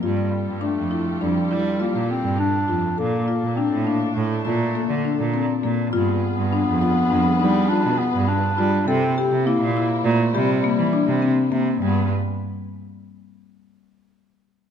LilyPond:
<<
  \new Staff \with { instrumentName = "String section" } { \time 5/4 \key g \dorian \tempo 4 = 102 <g f' g' a'>1~ <g f' g' a'>4 | <bes, d' a'>1~ <bes, d' a'>4 | <g f' aes' b'>1~ <g f' aes' b'>4 | <c bes e'>1~ <c bes e'>4 |
<g f' aes' b'>8 r1 r8 | }
  \new Staff \with { instrumentName = "Marimba" } { \time 5/4 \key g \dorian f'4 d'8 e'8 d'8 e'8 f'4 d'8 f'8 | a'8 f'8 d'8 d'4 f'8 bes8 d'8 c'8 bes8 | f'4 d'8 f'8 d'8 ees'8 f'4 d'8 f'8 | a'8 g'8 e'8 e'4 g'8 bes8 d'8 c'8 bes8 |
g8 r1 r8 | }
  \new Staff \with { instrumentName = "Clarinet" } { \time 5/4 \key g \dorian g4 a4 g4 bes8 c'8 d'4 | bes4 c'8 bes8 a2~ a8 r8 | b2. d'8 b8 d'4 | c'4 bes4 a8 g2 r8 |
b8 r1 r8 | }
  \new Staff \with { instrumentName = "Cello" } { \clef bass \time 5/4 \key g \dorian g,8 r16 g,8 f,8 r16 f,16 r16 g8. bes,16 r16 g,8 r16 f,8 | bes,8 r16 bes,8 a,8 r16 a,16 r16 bes,8. d16 r16 bes,8 r16 bes,8 | g,8 r16 g,8 f,8 r16 f,16 r16 g8. b,16 r16 g,8 r16 g8 | c8 r16 c8 bes,8 r16 bes,16 r16 c8. e16 r16 c8 r16 c8 |
g,8 r1 r8 | }
>>